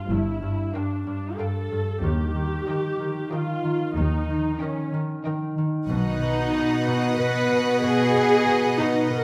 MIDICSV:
0, 0, Header, 1, 8, 480
1, 0, Start_track
1, 0, Tempo, 645161
1, 70, Time_signature, 3, 2, 24, 8
1, 6874, End_track
2, 0, Start_track
2, 0, Title_t, "Violin section"
2, 0, Program_c, 0, 48
2, 4387, Note_on_c, 0, 90, 36
2, 4393, Note_on_c, 0, 87, 35
2, 6519, Note_off_c, 0, 90, 0
2, 6874, Note_off_c, 0, 87, 0
2, 6874, End_track
3, 0, Start_track
3, 0, Title_t, "Violin section"
3, 0, Program_c, 1, 48
3, 556, Note_on_c, 1, 79, 30
3, 911, Note_off_c, 1, 79, 0
3, 1041, Note_on_c, 1, 79, 37
3, 1393, Note_off_c, 1, 79, 0
3, 2003, Note_on_c, 1, 79, 34
3, 2354, Note_off_c, 1, 79, 0
3, 2471, Note_on_c, 1, 79, 39
3, 2828, Note_off_c, 1, 79, 0
3, 3428, Note_on_c, 1, 79, 37
3, 3786, Note_off_c, 1, 79, 0
3, 3917, Note_on_c, 1, 79, 42
3, 4271, Note_off_c, 1, 79, 0
3, 4392, Note_on_c, 1, 78, 42
3, 6874, Note_off_c, 1, 78, 0
3, 6874, End_track
4, 0, Start_track
4, 0, Title_t, "Violin section"
4, 0, Program_c, 2, 48
4, 550, Note_on_c, 2, 70, 32
4, 550, Note_on_c, 2, 77, 30
4, 907, Note_off_c, 2, 70, 0
4, 907, Note_off_c, 2, 77, 0
4, 1029, Note_on_c, 2, 77, 34
4, 1031, Note_on_c, 2, 70, 30
4, 1387, Note_off_c, 2, 70, 0
4, 1387, Note_off_c, 2, 77, 0
4, 1994, Note_on_c, 2, 70, 33
4, 1994, Note_on_c, 2, 75, 35
4, 2349, Note_off_c, 2, 70, 0
4, 2349, Note_off_c, 2, 75, 0
4, 2471, Note_on_c, 2, 70, 35
4, 2471, Note_on_c, 2, 75, 34
4, 2827, Note_off_c, 2, 75, 0
4, 2828, Note_off_c, 2, 70, 0
4, 3427, Note_on_c, 2, 70, 38
4, 3432, Note_on_c, 2, 75, 40
4, 3786, Note_off_c, 2, 70, 0
4, 3788, Note_off_c, 2, 75, 0
4, 3901, Note_on_c, 2, 70, 37
4, 3903, Note_on_c, 2, 75, 38
4, 4262, Note_off_c, 2, 70, 0
4, 4263, Note_off_c, 2, 75, 0
4, 4378, Note_on_c, 2, 75, 44
4, 4381, Note_on_c, 2, 71, 49
4, 6874, Note_off_c, 2, 71, 0
4, 6874, Note_off_c, 2, 75, 0
4, 6874, End_track
5, 0, Start_track
5, 0, Title_t, "Viola section"
5, 0, Program_c, 3, 48
5, 73, Note_on_c, 3, 64, 43
5, 551, Note_on_c, 3, 62, 41
5, 552, Note_off_c, 3, 64, 0
5, 778, Note_off_c, 3, 62, 0
5, 786, Note_on_c, 3, 62, 41
5, 1023, Note_off_c, 3, 62, 0
5, 1029, Note_on_c, 3, 69, 53
5, 1506, Note_on_c, 3, 67, 47
5, 1509, Note_off_c, 3, 69, 0
5, 2467, Note_on_c, 3, 65, 51
5, 2468, Note_off_c, 3, 67, 0
5, 2944, Note_on_c, 3, 63, 54
5, 2948, Note_off_c, 3, 65, 0
5, 3417, Note_off_c, 3, 63, 0
5, 3433, Note_on_c, 3, 61, 45
5, 3672, Note_off_c, 3, 61, 0
5, 4388, Note_on_c, 3, 63, 71
5, 5319, Note_off_c, 3, 63, 0
5, 5355, Note_on_c, 3, 71, 71
5, 5832, Note_off_c, 3, 71, 0
5, 5832, Note_on_c, 3, 68, 91
5, 6537, Note_off_c, 3, 68, 0
5, 6548, Note_on_c, 3, 63, 63
5, 6789, Note_off_c, 3, 63, 0
5, 6793, Note_on_c, 3, 70, 77
5, 6874, Note_off_c, 3, 70, 0
5, 6874, End_track
6, 0, Start_track
6, 0, Title_t, "Harp"
6, 0, Program_c, 4, 46
6, 77, Note_on_c, 4, 43, 35
6, 306, Note_off_c, 4, 43, 0
6, 315, Note_on_c, 4, 43, 29
6, 551, Note_off_c, 4, 43, 0
6, 560, Note_on_c, 4, 43, 30
6, 786, Note_off_c, 4, 43, 0
6, 795, Note_on_c, 4, 43, 35
6, 1027, Note_off_c, 4, 43, 0
6, 1036, Note_on_c, 4, 43, 31
6, 1267, Note_off_c, 4, 43, 0
6, 1276, Note_on_c, 4, 43, 29
6, 1510, Note_on_c, 4, 51, 39
6, 1532, Note_off_c, 4, 43, 0
6, 1744, Note_off_c, 4, 51, 0
6, 1753, Note_on_c, 4, 51, 31
6, 1982, Note_off_c, 4, 51, 0
6, 1991, Note_on_c, 4, 51, 29
6, 2222, Note_off_c, 4, 51, 0
6, 2231, Note_on_c, 4, 51, 37
6, 2464, Note_off_c, 4, 51, 0
6, 2473, Note_on_c, 4, 51, 34
6, 2701, Note_off_c, 4, 51, 0
6, 2710, Note_on_c, 4, 51, 33
6, 2945, Note_off_c, 4, 51, 0
6, 2954, Note_on_c, 4, 51, 47
6, 3189, Note_off_c, 4, 51, 0
6, 3198, Note_on_c, 4, 51, 33
6, 3426, Note_off_c, 4, 51, 0
6, 3434, Note_on_c, 4, 51, 33
6, 3664, Note_off_c, 4, 51, 0
6, 3673, Note_on_c, 4, 51, 43
6, 3905, Note_off_c, 4, 51, 0
6, 3914, Note_on_c, 4, 51, 40
6, 4142, Note_off_c, 4, 51, 0
6, 4151, Note_on_c, 4, 51, 38
6, 4384, Note_on_c, 4, 47, 53
6, 4410, Note_off_c, 4, 51, 0
6, 4619, Note_off_c, 4, 47, 0
6, 4628, Note_on_c, 4, 47, 41
6, 4859, Note_off_c, 4, 47, 0
6, 4868, Note_on_c, 4, 47, 41
6, 5105, Note_off_c, 4, 47, 0
6, 5114, Note_on_c, 4, 47, 53
6, 5342, Note_off_c, 4, 47, 0
6, 5351, Note_on_c, 4, 47, 46
6, 5583, Note_off_c, 4, 47, 0
6, 5592, Note_on_c, 4, 47, 44
6, 5821, Note_off_c, 4, 47, 0
6, 5829, Note_on_c, 4, 47, 59
6, 6059, Note_off_c, 4, 47, 0
6, 6068, Note_on_c, 4, 47, 43
6, 6301, Note_off_c, 4, 47, 0
6, 6310, Note_on_c, 4, 47, 42
6, 6544, Note_off_c, 4, 47, 0
6, 6553, Note_on_c, 4, 47, 55
6, 6780, Note_off_c, 4, 47, 0
6, 6789, Note_on_c, 4, 47, 45
6, 6874, Note_off_c, 4, 47, 0
6, 6874, End_track
7, 0, Start_track
7, 0, Title_t, "Cello section"
7, 0, Program_c, 5, 48
7, 73, Note_on_c, 5, 43, 37
7, 451, Note_off_c, 5, 43, 0
7, 1513, Note_on_c, 5, 39, 45
7, 1891, Note_off_c, 5, 39, 0
7, 2947, Note_on_c, 5, 39, 45
7, 3328, Note_off_c, 5, 39, 0
7, 4387, Note_on_c, 5, 47, 48
7, 6874, Note_off_c, 5, 47, 0
7, 6874, End_track
8, 0, Start_track
8, 0, Title_t, "Double bass section"
8, 0, Program_c, 6, 48
8, 76, Note_on_c, 6, 31, 39
8, 453, Note_off_c, 6, 31, 0
8, 1513, Note_on_c, 6, 39, 41
8, 1891, Note_off_c, 6, 39, 0
8, 2943, Note_on_c, 6, 39, 45
8, 3326, Note_off_c, 6, 39, 0
8, 4391, Note_on_c, 6, 35, 45
8, 4841, Note_off_c, 6, 35, 0
8, 6874, End_track
0, 0, End_of_file